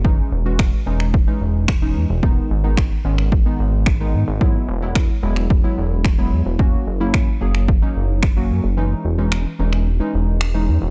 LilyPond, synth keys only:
\new Staff \with { instrumentName = "Synth keys" } { \time 4/4 \key cis \dorian \tempo 4 = 110 <e gis cis' dis'>8 r16 <e gis cis' fis'>8 r16 <e gis cis' dis'>8 r16 <e gis cis' dis'>8. r16 <e gis cis' dis'>8 r16 | <dis gis b dis'>8 r16 <dis gis b dis'>8 r16 <dis gis b cis'>8 r16 <dis gis b dis'>8. r16 <dis gis b dis'>8 r16 | <fis gis b e'>8 r16 <fis gis b e'>8 r16 <fis gis b e'>8 r16 <fis gis b e'>8. r16 <fis gis b e'>8 r16 | <fis ais cis' fis'>8 r16 <fis ais cis' e'>8 r16 <fis ais cis' gis'>8 r16 <fis ais cis' dis'>8. r16 <fis ais cis' fis'>8 r16 |
<e gis cis' dis'>8 r16 <e gis cis' dis'>8 r16 <e gis cis' dis'>8 r16 <e gis cis' dis'>8. r16 <e gis cis' dis'>8 r16 | }